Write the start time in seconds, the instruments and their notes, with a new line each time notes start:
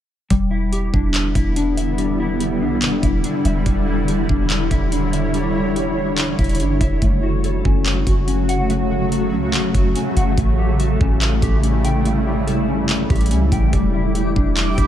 0.30 808-style bass E1, ambient pad D3 G3 B3 E4, clean electric guitar G3, kick, closed hi-hat
0.51 clean electric guitar E4
0.72 clean electric guitar G4, closed hi-hat
0.93 808-style bass E1, clean electric guitar D4, kick
1.14 clap, closed hi-hat
1.35 808-style bass E1, clean electric guitar E4, kick, closed hi-hat
1.56 clean electric guitar D4, closed hi-hat
1.77 clean electric guitar E5, closed hi-hat
1.98 clean electric guitar G3, closed hi-hat
2.20 clean electric guitar E4
2.40 clean electric guitar G4, closed hi-hat
2.61 808-style bass B1, clean electric guitar D4
2.82 808-style bass E1, clap, closed hi-hat
3.03 808-style bass E1, clean electric guitar E4, kick, closed hi-hat
3.24 clean electric guitar D4, closed hi-hat
3.45 808-style bass E1, clean electric guitar E5, closed hi-hat
3.66 808-style bass E1, clean electric guitar G3, ambient pad C#5, kick, closed hi-hat
3.87 clean electric guitar E4
4.08 clean electric guitar G4, closed hi-hat
4.29 808-style bass E1, clean electric guitar D4, kick
4.50 clap, closed hi-hat
4.71 808-style bass E1, clean electric guitar E4, kick, closed hi-hat
4.92 clean electric guitar D4, closed hi-hat
5.13 clean electric guitar E5, closed hi-hat
5.34 clean electric guitar G3, closed hi-hat
5.55 clean electric guitar E4
5.76 clean electric guitar G4, closed hi-hat
5.97 clean electric guitar D4
6.18 clap, closed hi-hat
6.39 808-style bass E1, clean electric guitar E4, kick, closed hi-hat
6.44 closed hi-hat
6.49 closed hi-hat
6.55 closed hi-hat
6.60 808-style bass G1, clean electric guitar D4, closed hi-hat
6.81 808-style bass E1, clean electric guitar E5, kick, closed hi-hat
7.02 808-style bass F#1, ambient pad C#3 F#3 A3 F#4, clean electric guitar A3, kick, closed hi-hat
7.23 clean electric guitar F#4
7.44 clean electric guitar A4, closed hi-hat
7.65 808-style bass F#1, clean electric guitar C#4, kick
7.86 clap, closed hi-hat
8.07 808-style bass F#1, clean electric guitar F#4, kick, closed hi-hat
8.28 clean electric guitar C#4, closed hi-hat
8.49 clean electric guitar F#5, closed hi-hat
8.70 clean electric guitar A3, closed hi-hat
8.91 clean electric guitar F#4
9.12 clean electric guitar A4, closed hi-hat
9.32 808-style bass C#2, clean electric guitar C#4
9.54 808-style bass F#1, clap, closed hi-hat
9.75 808-style bass F#1, clean electric guitar F#4, kick, closed hi-hat
9.95 clean electric guitar C#4, closed hi-hat
10.16 808-style bass F#1, clean electric guitar F#5, closed hi-hat
10.37 808-style bass A1, ambient pad C#3 G3 E4, clean electric guitar A3, kick, closed hi-hat
10.59 clean electric guitar G4
10.79 clean electric guitar A4, closed hi-hat
11.01 808-style bass A1, clean electric guitar C#4, kick
11.22 clap, closed hi-hat
11.42 808-style bass A1, clean electric guitar G4, kick, closed hi-hat
11.63 clean electric guitar C#4, closed hi-hat
11.85 clean electric guitar G5, closed hi-hat
12.05 clean electric guitar A3, closed hi-hat
12.26 clean electric guitar G4
12.47 clean electric guitar A4, closed hi-hat
12.68 clean electric guitar C#4
12.89 clap, closed hi-hat
13.10 808-style bass A1, clean electric guitar G4, kick, closed hi-hat
13.16 closed hi-hat
13.21 closed hi-hat
13.26 closed hi-hat
13.31 808-style bass C#2, clean electric guitar C#4, closed hi-hat
13.52 808-style bass A1, clean electric guitar G5, kick, closed hi-hat
13.73 808-style bass E1, ambient pad D3 G3 B3, clean electric guitar G3, synth texture G4 E5 D6, kick, closed hi-hat
13.93 clean electric guitar E4
14.15 clean electric guitar G4, closed hi-hat
14.36 808-style bass E1, clean electric guitar D4, kick
14.57 clap, closed hi-hat
14.78 808-style bass E1, clean electric guitar E4, kick, closed hi-hat